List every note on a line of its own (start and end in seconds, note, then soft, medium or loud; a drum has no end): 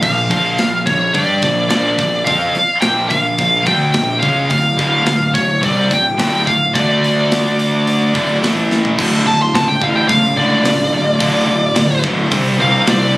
0.02 0.29 A#1 medium
0.02 0.25 A#2 medium
0.02 0.25 F3 medium
0.02 0.83 F5 loud
0.02 kick loud
0.02 open hi-hat medium
0.02 crash loud
0.30 0.57 A#1 loud
0.30 0.57 A#2 medium
0.30 0.58 F3 medium
0.30 0.58 A#3 loud
0.30 kick loud
0.30 open hi-hat medium
0.58 0.85 A#1 medium
0.58 0.81 A#2 medium
0.58 0.81 F3 medium
0.58 snare medium
0.58 open hi-hat medium
0.86 1.13 A#1 medium
0.86 1.09 A#2 medium
0.86 1.09 F3 medium
0.86 1.14 C#5 medium
0.86 kick loud
0.86 open hi-hat medium
1.13 1.41 G2 loud
1.13 1.41 G3 loud
1.13 1.41 D4 loud
1.13 1.42 G4 loud
1.13 1.68 D5 medium
1.13 kick medium
1.13 open hi-hat medium
1.42 1.69 A#1 medium
1.42 1.65 A#2 medium
1.42 1.65 F3 medium
1.42 kick medium
1.42 open hi-hat medium
1.69 1.97 A#1 loud
1.69 1.97 A#2 medium
1.69 1.98 F3 loud
1.69 1.98 A#3 loud
1.69 2.28 D5 medium
1.69 snare loud
1.69 open hi-hat medium
1.98 2.25 A#1 medium
1.98 2.21 A#2 medium
1.98 2.22 F3 medium
1.98 kick medium
1.98 open hi-hat medium
2.24 2.53 F2 loud
2.24 2.54 F3 loud
2.24 2.54 C4 loud
2.24 2.55 F4 loud
2.24 2.81 F5 medium
2.24 kick loud
2.24 open hi-hat medium
2.55 muted picked electric bass stroke soft
2.55 muted distorted electric guitar stroke medium
2.55 open hi-hat soft
2.81 3.09 A#1 loud
2.81 3.10 A#2 medium
2.81 3.10 F3 medium
2.81 3.11 A#3 loud
2.81 3.08 G5 loud
2.81 snare loud
2.81 open hi-hat medium
3.09 3.37 A#1 medium
3.09 3.34 A#2 medium
3.09 3.34 F3 medium
3.09 3.66 F5 medium
3.09 kick medium
3.09 open hi-hat medium
3.38 3.65 A#1 medium
3.38 3.62 A#2 medium
3.38 3.62 F3 medium
3.38 kick medium
3.38 open hi-hat medium
3.66 3.93 D2 medium
3.66 3.94 D3 loud
3.66 3.94 A3 loud
3.66 3.95 D4 loud
3.66 4.19 G5 loud
3.66 kick loud
3.66 open hi-hat medium
3.94 4.21 A#1 loud
3.94 4.17 A#2 medium
3.94 4.17 F3 medium
3.94 snare loud
3.94 open hi-hat medium
4.20 4.49 C#2 loud
4.20 4.49 C#3 medium
4.20 4.50 G#3 medium
4.20 4.50 C#4 medium
4.20 4.49 F5 medium
4.20 kick medium
4.20 open hi-hat medium
4.48 4.77 D1 medium
4.48 4.72 D2 medium
4.48 4.72 A2 medium
4.48 5.37 F5 medium
4.48 kick loud
4.48 open hi-hat medium
4.77 5.05 D1 medium
4.77 5.04 D2 loud
4.77 5.04 A2 loud
4.77 5.05 D3 medium
4.77 kick loud
4.77 open hi-hat medium
5.05 5.33 D1 medium
5.05 5.28 D2 medium
5.05 5.29 A2 medium
5.05 snare medium
5.05 open hi-hat medium
5.34 5.61 D1 medium
5.34 5.57 D2 medium
5.34 5.57 A2 medium
5.34 5.60 C#5 medium
5.34 kick loud
5.34 open hi-hat medium
5.61 5.89 C2 medium
5.61 5.89 C3 medium
5.61 5.89 G3 loud
5.61 5.90 C4 loud
5.61 5.92 D5 loud
5.61 kick medium
5.61 open hi-hat medium
5.90 6.17 D1 medium
5.90 6.13 D2 medium
5.90 6.13 A2 medium
5.90 6.44 G5 medium
5.90 kick medium
5.90 open hi-hat medium
6.18 6.44 D1 loud
6.18 6.45 D2 medium
6.18 6.45 A2 loud
6.18 6.46 D3 medium
6.18 snare loud
6.18 open hi-hat medium
6.46 6.73 D1 medium
6.46 6.69 D2 medium
6.46 6.69 A2 medium
6.46 6.76 F5 medium
6.46 kick medium
6.46 open hi-hat medium
6.74 8.11 D2 loud
6.74 8.13 D3 loud
6.74 8.13 A3 loud
6.74 8.14 D4 loud
6.74 8.38 D5 medium
6.74 kick loud
6.74 open hi-hat medium
7.04 open hi-hat medium
7.32 snare medium
7.32 open hi-hat medium
7.59 open hi-hat medium
7.87 open hi-hat medium
8.13 8.41 D1 medium
8.13 8.41 D2 loud
8.13 8.40 A2 loud
8.13 8.41 D3 loud
8.13 kick loud
8.13 open hi-hat medium
8.41 8.94 A1 loud
8.41 8.96 A2 loud
8.41 8.96 E3 loud
8.41 8.97 A3 loud
8.41 snare medium
8.41 open hi-hat medium
8.71 snare medium
8.85 floor tom medium
8.96 9.19 D1 medium
8.96 9.23 D2 loud
8.96 9.24 A2 loud
8.96 9.24 D3 loud
8.96 12.29 A3 medium
8.96 12.29 D4 medium
8.96 12.30 E4 medium
8.96 12.29 F4 medium
8.96 kick loud
8.96 crash loud
9.24 9.47 D1 loud
9.24 9.50 D2 medium
9.24 9.51 A2 medium
9.24 9.40 A5 medium
9.42 9.55 C6 medium
9.54 9.75 C#2 medium
9.54 9.79 D2 medium
9.54 9.79 A2 medium
9.54 9.68 A5 medium
9.54 snare loud
9.54 open hi-hat medium
9.68 9.83 G5 medium
9.82 10.02 A1 medium
9.82 10.08 D2 medium
9.82 10.08 A2 medium
9.82 10.08 D3 loud
9.82 9.96 F5 medium
9.82 kick medium
9.96 10.08 G5 loud
10.08 10.51 C#2 loud
10.08 10.34 D2 loud
10.08 10.34 A2 medium
10.08 10.36 F5 medium
10.08 kick loud
10.08 open hi-hat medium
10.36 10.62 D2 medium
10.36 10.63 A2 loud
10.36 10.63 D3 loud
10.36 12.00 D5 medium
10.63 10.85 C#2 loud
10.63 10.89 D2 medium
10.63 10.90 A2 medium
10.63 snare loud
10.63 open hi-hat medium
10.92 11.13 D1 loud
10.92 11.17 D2 medium
10.92 11.18 A2 medium
11.19 11.42 D1 medium
11.19 11.46 D2 loud
11.19 11.46 A2 loud
11.19 11.47 D3 loud
11.19 kick loud
11.19 open hi-hat medium
11.48 11.69 D1 medium
11.48 11.74 D2 medium
11.48 11.74 A2 medium
11.75 11.97 D1 medium
11.75 12.01 D2 medium
11.75 12.01 A2 medium
11.75 snare medium
11.75 open hi-hat medium
12.03 12.25 D1 medium
12.03 12.30 D2 medium
12.03 12.30 A2 loud
12.03 12.31 D3 medium
12.03 kick medium
12.31 12.53 C2 loud
12.31 12.56 C3 loud
12.31 12.85 C3 medium
12.31 13.18 G3 medium
12.31 12.56 G3 loud
12.31 12.57 C4 loud
12.31 13.18 D4 medium
12.31 13.18 C5 medium
12.31 kick loud
12.31 open hi-hat medium
12.57 12.81 C2 loud
12.57 12.83 C3 loud
12.57 12.84 G3 loud
12.57 12.84 C4 loud
12.61 12.88 F5 loud
12.84 13.12 C3 medium
12.84 13.18 C3 medium
12.84 13.13 G3 loud
12.84 13.13 C4 loud
12.84 snare loud
12.84 open hi-hat medium
12.89 13.18 C2 loud
12.89 13.16 D5 medium
13.14 13.18 C3 medium
13.14 13.18 G3 medium